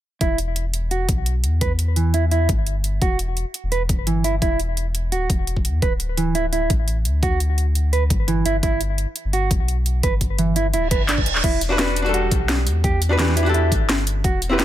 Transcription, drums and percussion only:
0.21 kick, closed hi-hat
0.38 closed hi-hat
0.56 closed hi-hat
0.74 closed hi-hat
0.91 closed hi-hat
1.09 kick, closed hi-hat
1.26 closed hi-hat
1.44 closed hi-hat
1.61 kick, closed hi-hat
1.79 closed hi-hat
1.96 closed hi-hat
2.14 closed hi-hat
2.31 closed hi-hat
2.49 kick, closed hi-hat
2.66 closed hi-hat
2.84 closed hi-hat
3.02 kick, closed hi-hat
3.19 closed hi-hat
3.37 closed hi-hat
3.54 closed hi-hat
3.72 closed hi-hat
3.89 kick, closed hi-hat
4.07 closed hi-hat
4.24 closed hi-hat
4.42 kick, closed hi-hat
4.60 closed hi-hat
4.77 closed hi-hat
4.95 closed hi-hat
5.12 closed hi-hat
5.30 kick, closed hi-hat
5.47 closed hi-hat
5.57 kick
5.65 closed hi-hat
5.82 kick, closed hi-hat
6.00 closed hi-hat
6.17 closed hi-hat
6.35 closed hi-hat
6.53 closed hi-hat
6.70 kick, closed hi-hat
6.88 closed hi-hat
7.05 closed hi-hat
7.23 kick, closed hi-hat
7.40 closed hi-hat
7.58 closed hi-hat
7.75 closed hi-hat
7.93 closed hi-hat
8.10 kick, closed hi-hat
8.28 closed hi-hat
8.46 closed hi-hat
8.63 kick, closed hi-hat
8.81 closed hi-hat
8.98 closed hi-hat
9.16 closed hi-hat
9.33 closed hi-hat
9.51 kick, closed hi-hat
9.68 closed hi-hat
9.86 closed hi-hat
10.03 kick, closed hi-hat
10.21 kick, closed hi-hat
10.38 closed hi-hat
10.56 closed hi-hat
10.73 closed hi-hat
10.91 kick, closed hi-hat
11.09 clap, closed hi-hat
11.18 kick
11.26 closed hi-hat
11.35 clap
11.44 kick, closed hi-hat, crash
11.61 closed hi-hat, tambourine
11.79 snare, closed hi-hat
11.96 closed hi-hat, tambourine
12.06 tambourine
12.14 closed hi-hat
12.31 kick, closed hi-hat, tambourine
12.49 snare, closed hi-hat
12.67 closed hi-hat, tambourine
12.84 kick, closed hi-hat
13.02 closed hi-hat, tambourine
13.19 snare, closed hi-hat
13.29 snare
13.37 closed hi-hat, tambourine
13.46 tambourine
13.54 closed hi-hat
13.72 kick, closed hi-hat, tambourine
13.89 snare, closed hi-hat
14.07 closed hi-hat, tambourine
14.24 kick, closed hi-hat
14.42 closed hi-hat, tambourine
14.60 snare, closed hi-hat

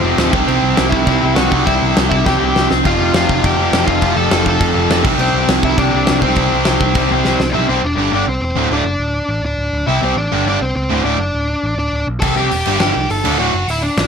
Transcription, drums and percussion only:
0.18 snare, crash
0.33 kick
0.48 crash
0.77 snare, crash
0.92 kick
1.07 kick, crash
1.36 snare, crash
1.52 kick
1.67 kick, crash
1.97 snare, crash
2.12 kick
2.26 kick, snare
2.56 snare
2.71 snare
2.85 kick, crash
3.14 snare, crash
3.29 kick
3.44 kick, crash
3.73 snare, crash
3.88 kick
4.02 kick, crash
4.31 snare, crash
4.46 kick
4.61 kick, crash
4.91 snare, crash
5.05 kick, crash
5.19 crash
5.49 snare, crash
5.63 kick
5.78 kick, crash
6.07 snare, crash
6.22 kick
6.36 kick, crash
6.65 snare, crash
6.81 kick
6.95 kick, crash
7.25 snare
7.40 snare
12.22 kick, crash
12.51 open hi-hat
12.65 crash
12.80 snare
13.10 open hi-hat
13.25 crash
13.69 open hi-hat
13.97 snare, open hi-hat

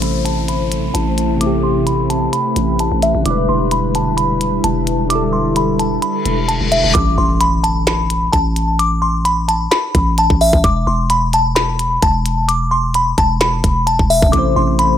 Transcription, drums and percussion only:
0.02 closed hi-hat
0.26 closed hi-hat
0.48 closed hi-hat
0.72 closed hi-hat
0.95 closed hi-hat
1.18 closed hi-hat
1.41 closed hi-hat
1.87 closed hi-hat
2.10 closed hi-hat
2.33 closed hi-hat
2.56 closed hi-hat
2.79 closed hi-hat
3.02 closed hi-hat
3.26 closed hi-hat
3.71 closed hi-hat
3.95 closed hi-hat
4.18 closed hi-hat
4.41 closed hi-hat
4.64 closed hi-hat
4.87 closed hi-hat
5.10 closed hi-hat
5.56 closed hi-hat
5.79 closed hi-hat
6.02 closed hi-hat
6.26 closed hi-hat
6.49 closed hi-hat
6.72 closed hi-hat
6.95 kick, closed hi-hat
7.41 closed hi-hat
7.64 closed hi-hat
7.87 snare, closed hi-hat
8.10 closed hi-hat
8.33 kick, closed hi-hat
8.56 closed hi-hat
8.79 closed hi-hat
9.25 closed hi-hat
9.49 closed hi-hat
9.72 snare, closed hi-hat
9.95 kick, closed hi-hat
10.18 closed hi-hat
10.30 kick
10.41 open hi-hat
10.53 kick
10.64 kick, closed hi-hat
11.10 closed hi-hat
11.33 closed hi-hat
11.56 snare, closed hi-hat
11.79 closed hi-hat
12.02 kick, closed hi-hat
12.26 closed hi-hat
12.49 closed hi-hat
12.94 closed hi-hat
13.18 kick, closed hi-hat
13.41 snare, closed hi-hat
13.64 kick, closed hi-hat
13.87 closed hi-hat
13.99 kick
14.10 open hi-hat
14.22 kick
14.33 kick, closed hi-hat
14.79 closed hi-hat

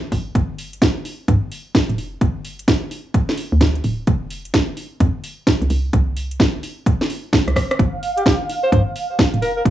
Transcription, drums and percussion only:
0.12 kick, open hi-hat
0.35 kick, closed hi-hat
0.58 open hi-hat
0.73 closed hi-hat
0.82 kick, snare, closed hi-hat
1.05 open hi-hat
1.28 kick, closed hi-hat
1.52 open hi-hat
1.75 kick, snare, closed hi-hat
1.89 closed hi-hat
1.98 open hi-hat
2.21 kick, closed hi-hat
2.45 open hi-hat
2.59 closed hi-hat
2.68 kick, snare, closed hi-hat
2.91 open hi-hat
3.14 kick, closed hi-hat
3.29 snare
3.38 open hi-hat
3.61 kick, snare, closed hi-hat
3.75 closed hi-hat
3.84 open hi-hat
4.07 kick, closed hi-hat
4.30 open hi-hat
4.45 closed hi-hat
4.54 kick, snare, closed hi-hat
4.77 open hi-hat
5.00 kick, closed hi-hat
5.24 open hi-hat
5.47 kick, snare, closed hi-hat
5.62 closed hi-hat
5.70 open hi-hat
5.93 kick, closed hi-hat
6.17 open hi-hat
6.31 closed hi-hat
6.40 kick, snare, closed hi-hat
6.63 open hi-hat
6.86 kick, closed hi-hat
7.01 snare
7.10 open hi-hat
7.33 kick, snare, open hi-hat
7.48 cross-stick, closed hi-hat
7.56 kick, cross-stick, open hi-hat
7.71 cross-stick, closed hi-hat
7.79 kick, closed hi-hat
8.03 open hi-hat
8.17 closed hi-hat
8.26 kick, snare, closed hi-hat
8.49 open hi-hat
8.72 kick, closed hi-hat
8.96 open hi-hat
9.19 kick, snare, closed hi-hat
9.34 closed hi-hat
9.42 open hi-hat
9.65 kick, closed hi-hat

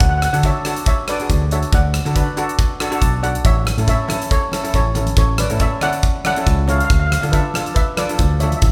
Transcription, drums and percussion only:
0.00 kick, closed hi-hat
0.22 cross-stick, closed hi-hat
0.34 closed hi-hat
0.43 kick, closed hi-hat
0.65 cross-stick, closed hi-hat
0.76 closed hi-hat
0.86 kick, closed hi-hat
1.08 cross-stick, closed hi-hat
1.20 closed hi-hat
1.30 kick, closed hi-hat
1.51 closed hi-hat
1.62 closed hi-hat
1.72 kick, closed hi-hat
1.94 cross-stick, closed hi-hat
2.06 closed hi-hat
2.16 kick, closed hi-hat
2.37 closed hi-hat
2.49 closed hi-hat
2.59 kick, closed hi-hat
2.80 cross-stick, closed hi-hat
2.92 closed hi-hat
3.02 kick, closed hi-hat
3.24 closed hi-hat
3.35 closed hi-hat
3.45 kick, closed hi-hat
3.65 cross-stick, closed hi-hat, high conga
3.78 closed hi-hat
3.88 kick, closed hi-hat
4.08 cross-stick, closed hi-hat, high conga, low conga
4.22 closed hi-hat
4.31 kick, closed hi-hat
4.52 cross-stick, closed hi-hat, high conga
4.65 closed hi-hat
4.74 kick, closed hi-hat
4.95 closed hi-hat, low conga
5.06 closed hi-hat, high conga
5.17 kick, closed hi-hat
5.38 cross-stick, closed hi-hat, high conga
5.50 closed hi-hat
5.60 kick, closed hi-hat
5.81 cross-stick, closed hi-hat, low conga
5.93 closed hi-hat
6.03 kick, closed hi-hat
6.25 cross-stick, closed hi-hat, high conga
6.36 closed hi-hat
6.47 kick, closed hi-hat
6.68 closed hi-hat, low conga
6.80 closed hi-hat
6.90 kick, closed hi-hat
7.10 cross-stick, closed hi-hat, high conga
7.23 closed hi-hat
7.33 kick, closed hi-hat
7.54 cross-stick, closed hi-hat, high conga, low conga
7.66 closed hi-hat
7.76 kick, closed hi-hat
7.97 cross-stick, closed hi-hat, high conga
8.09 closed hi-hat
8.19 kick, closed hi-hat
8.40 closed hi-hat, low conga
8.51 closed hi-hat, high conga
8.62 kick, closed hi-hat

